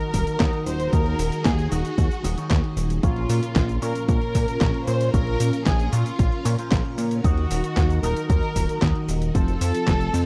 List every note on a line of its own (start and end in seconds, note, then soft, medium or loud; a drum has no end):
0.00 0.37 D#3 medium
0.00 0.37 D#4 medium
0.00 2.99 D#4 medium
0.00 0.37 F#4 medium
0.00 2.99 F#4 medium
0.00 0.37 A#4 medium
0.00 0.62 A#4 loud
0.00 0.91 A#4 medium
0.00 0.37 D#5 medium
0.00 closed hi-hat soft
0.14 0.25 D#1 loud
0.14 kick medium
0.14 open hi-hat loud
0.14 cabasa medium
0.27 closed hi-hat medium
0.27 cabasa soft
0.40 0.51 D#2 medium
0.40 0.90 D#3 loud
0.40 0.90 D#4 medium
0.40 0.90 F#4 medium
0.40 0.90 A#4 medium
0.40 0.90 D#5 loud
0.40 kick loud
0.40 snare loud
0.40 clap medium
0.40 closed hi-hat medium
0.40 cabasa soft
0.53 closed hi-hat soft
0.66 0.89 D#1 medium
0.66 0.91 C5 loud
0.66 open hi-hat medium
0.66 cabasa medium
0.80 closed hi-hat medium
0.80 cabasa soft
0.92 1.15 D#2 loud
0.92 1.69 D#3 medium
0.92 1.69 D#4 medium
0.92 1.69 F#4 medium
0.92 3.01 G#4 medium
0.92 1.45 A#4 loud
0.92 1.69 A#4 medium
0.92 1.69 D#5 medium
0.92 kick loud
0.92 closed hi-hat medium
0.92 cabasa soft
1.06 closed hi-hat soft
1.19 1.30 D#1 loud
1.19 open hi-hat loud
1.19 cabasa medium
1.32 closed hi-hat soft
1.32 cabasa soft
1.45 1.68 D#2 loud
1.45 1.72 G#4 loud
1.45 kick loud
1.45 snare loud
1.45 clap medium
1.45 closed hi-hat medium
1.45 cabasa soft
1.59 closed hi-hat soft
1.59 cabasa soft
1.71 1.83 D#1 loud
1.71 1.89 D#3 medium
1.71 1.89 D#4 medium
1.71 2.50 F#4 medium
1.71 1.89 F#4 medium
1.71 1.89 A#4 medium
1.71 1.89 D#5 loud
1.71 open hi-hat medium
1.71 cabasa medium
1.85 closed hi-hat medium
1.85 cabasa soft
1.98 2.09 D#2 loud
1.98 kick loud
1.98 closed hi-hat medium
1.98 cabasa soft
2.11 closed hi-hat soft
2.11 cabasa soft
2.24 2.35 D#1 loud
2.24 2.34 D#3 loud
2.24 2.34 D#4 medium
2.24 2.34 F#4 medium
2.24 2.34 A#4 medium
2.24 2.34 D#5 loud
2.24 open hi-hat loud
2.24 cabasa medium
2.37 3.00 D#3 medium
2.37 3.00 D#4 medium
2.37 3.00 F#4 medium
2.37 3.00 A#4 medium
2.37 3.00 C#5 loud
2.37 closed hi-hat medium
2.37 cabasa soft
2.51 2.62 D#2 medium
2.51 kick loud
2.51 snare loud
2.51 clap medium
2.51 closed hi-hat soft
2.51 cabasa soft
2.64 closed hi-hat soft
2.77 2.99 D#1 medium
2.77 open hi-hat medium
2.77 cabasa medium
2.90 closed hi-hat medium
2.90 cabasa soft
3.03 3.26 A#1 loud
3.03 3.79 A#2 medium
3.03 7.20 C#4 medium
3.03 3.79 C#4 medium
3.03 7.20 F4 medium
3.03 3.79 F4 medium
3.03 3.78 F4 loud
3.03 9.31 A#4 medium
3.03 3.79 A#4 medium
3.03 3.79 C#5 medium
3.03 kick loud
3.03 closed hi-hat medium
3.03 cabasa soft
3.16 closed hi-hat soft
3.29 3.41 A#2 loud
3.29 open hi-hat loud
3.29 cabasa medium
3.43 closed hi-hat medium
3.43 cabasa soft
3.56 3.78 A#1 loud
3.56 kick loud
3.56 snare loud
3.56 clap medium
3.56 closed hi-hat medium
3.56 cabasa soft
3.69 closed hi-hat soft
3.69 cabasa soft
3.82 4.58 A#2 medium
3.82 3.93 A#2 medium
3.82 4.58 C#4 medium
3.82 4.58 F4 medium
3.82 4.07 A#4 loud
3.82 4.58 A#4 medium
3.82 4.58 C#5 medium
3.82 open hi-hat loud
3.82 cabasa medium
3.95 closed hi-hat medium
3.95 cabasa soft
4.08 4.20 A#1 loud
4.08 4.83 A#4 loud
4.08 kick loud
4.08 closed hi-hat medium
4.08 cabasa soft
4.22 closed hi-hat soft
4.35 4.46 A#2 loud
4.35 kick medium
4.35 open hi-hat loud
4.35 cabasa medium
4.48 closed hi-hat soft
4.48 cabasa soft
4.61 4.72 A#1 medium
4.61 5.11 A#2 loud
4.61 5.11 C#4 medium
4.61 5.11 F4 medium
4.61 5.11 A#4 medium
4.61 5.11 C#5 loud
4.61 kick loud
4.61 snare loud
4.61 clap medium
4.61 closed hi-hat medium
4.61 cabasa soft
4.74 closed hi-hat soft
4.87 5.10 A#2 medium
4.87 5.14 C5 loud
4.87 open hi-hat medium
4.87 cabasa medium
5.01 closed hi-hat medium
5.01 cabasa soft
5.13 5.36 A#1 loud
5.13 5.90 A#2 medium
5.13 5.90 C#4 medium
5.13 5.90 F4 medium
5.13 5.63 A#4 loud
5.13 5.90 A#4 medium
5.13 5.90 C#5 medium
5.13 kick loud
5.13 closed hi-hat medium
5.13 cabasa soft
5.27 closed hi-hat soft
5.40 5.51 A#2 loud
5.40 open hi-hat loud
5.40 cabasa medium
5.53 closed hi-hat medium
5.53 cabasa soft
5.66 5.89 A#1 loud
5.66 5.93 G#4 loud
5.66 kick loud
5.66 snare loud
5.66 clap medium
5.66 closed hi-hat medium
5.66 cabasa soft
5.80 closed hi-hat soft
5.80 cabasa soft
5.92 6.10 A#2 medium
5.92 6.04 A#2 loud
5.92 6.10 C#4 medium
5.92 6.72 F4 medium
5.92 6.10 F4 medium
5.92 6.10 A#4 medium
5.92 6.10 C#5 loud
5.92 open hi-hat loud
5.92 cabasa medium
6.06 closed hi-hat medium
6.06 cabasa soft
6.19 6.30 A#1 loud
6.19 kick loud
6.19 closed hi-hat medium
6.19 cabasa soft
6.32 closed hi-hat soft
6.45 6.55 A#2 loud
6.45 6.57 A#2 loud
6.45 6.55 C#4 medium
6.45 6.55 F4 medium
6.45 6.55 A#4 medium
6.45 6.55 C#5 loud
6.45 open hi-hat loud
6.45 cabasa medium
6.58 7.21 A#2 medium
6.58 7.21 C#4 medium
6.58 7.21 F4 medium
6.58 7.21 A#4 medium
6.58 7.21 C5 loud
6.58 closed hi-hat medium
6.58 cabasa soft
6.72 6.83 A#1 medium
6.72 kick loud
6.72 snare loud
6.72 clap medium
6.72 closed hi-hat medium
6.72 cabasa soft
6.85 closed hi-hat soft
6.98 7.20 A#2 medium
6.98 open hi-hat loud
6.98 cabasa medium
7.11 closed hi-hat medium
7.11 cabasa soft
7.24 7.47 D#2 loud
7.24 8.00 D#3 medium
7.24 8.00 D#4 medium
7.24 9.33 D#4 medium
7.24 7.99 F#4 loud
7.24 9.33 F#4 medium
7.24 8.00 F#4 medium
7.24 8.00 A#4 medium
7.24 8.00 D#5 medium
7.24 kick loud
7.24 closed hi-hat medium
7.24 cabasa soft
7.38 closed hi-hat soft
7.51 7.62 D#1 loud
7.51 open hi-hat loud
7.51 cabasa medium
7.64 closed hi-hat medium
7.64 cabasa soft
7.77 7.99 D#2 loud
7.77 kick loud
7.77 snare loud
7.77 clap medium
7.77 closed hi-hat medium
7.77 cabasa soft
7.90 closed hi-hat soft
7.90 cabasa soft
8.03 8.14 D#1 loud
8.03 8.79 D#3 medium
8.03 8.79 D#4 medium
8.03 8.79 F#4 medium
8.03 8.28 A#4 loud
8.03 8.79 A#4 medium
8.03 8.79 D#5 medium
8.03 open hi-hat loud
8.03 cabasa medium
8.17 closed hi-hat medium
8.17 cabasa soft
8.30 8.41 D#2 loud
8.30 9.05 A#4 loud
8.30 kick loud
8.30 closed hi-hat medium
8.30 cabasa soft
8.43 closed hi-hat soft
8.56 8.67 D#1 loud
8.56 kick medium
8.56 open hi-hat loud
8.56 cabasa medium
8.69 closed hi-hat medium
8.69 cabasa soft
8.82 8.93 D#2 medium
8.82 9.32 D#3 loud
8.82 9.32 D#4 medium
8.82 9.32 F#4 medium
8.82 9.32 A#4 medium
8.82 9.32 D#5 loud
8.82 kick loud
8.82 snare loud
8.82 clap medium
8.82 closed hi-hat medium
8.82 cabasa soft
8.95 closed hi-hat soft
9.09 9.31 D#1 medium
9.09 open hi-hat loud
9.09 cabasa medium
9.22 closed hi-hat medium
9.22 cabasa soft
9.34 9.57 F1 loud
9.34 10.11 F3 medium
9.34 10.26 C4 medium
9.34 10.11 C4 medium
9.34 10.26 F4 medium
9.34 10.11 F4 medium
9.34 10.26 A4 loud
9.34 10.26 A4 medium
9.34 10.11 A4 medium
9.34 10.11 C5 medium
9.34 kick loud
9.34 closed hi-hat medium
9.34 cabasa soft
9.48 closed hi-hat soft
9.48 cabasa soft
9.61 9.72 F2 loud
9.61 open hi-hat loud
9.61 cabasa medium
9.74 closed hi-hat medium
9.74 cabasa soft
9.87 10.10 F1 loud
9.87 kick loud
9.87 snare loud
9.87 clap medium
9.87 closed hi-hat medium
9.87 cabasa soft
10.01 closed hi-hat soft
10.01 cabasa soft
10.13 10.25 F2 loud
10.13 10.26 F3 medium
10.13 10.26 C4 medium
10.13 10.26 F4 medium
10.13 10.26 A4 medium
10.13 10.26 C5 loud
10.13 open hi-hat loud
10.13 cabasa medium